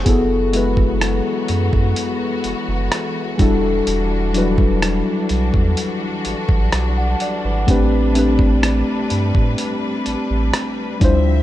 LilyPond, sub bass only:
\new Staff \with { instrumentName = "Sub bass" } { \clef bass \time 4/4 \key a \mixolydian \tempo 4 = 63 fis,,4~ fis,,16 r16 fis,16 fis,16 r8 fis,,16 fis,,16 r8 e,,8 | e,,4~ e,,16 r16 b,,16 e,16 r8 a,,16 a,,16 b,,8 r16 gis,,16 | a,,4~ a,,16 r16 g,16 a,16 r8 a,,16 a,,16 r8 d,8 | }